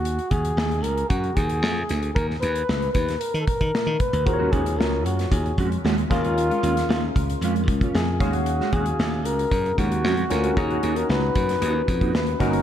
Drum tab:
HH |xxxx-xxxxxxx--xx|x-xx-xxxxxxx--xx|x-xx--xxxxxx-xxx|xxxx--xxxxxx--xx|
SD |----o-------o-o-|-o--o--o----o---|----o--o----o-o-|---oo-------o-o-|
BD |--o-----o-o-----|o-----o---oo--o-|o-o-----o-o---o-|------o---oo--o-|

HH |x-xx--xxxxxx-xxx|xxxx--xxx-xx-xxx|
SD |-o--o-------o-o-|----o--o----o-o-|
BD |--o-----o-o-----|o-----o---oo--o-|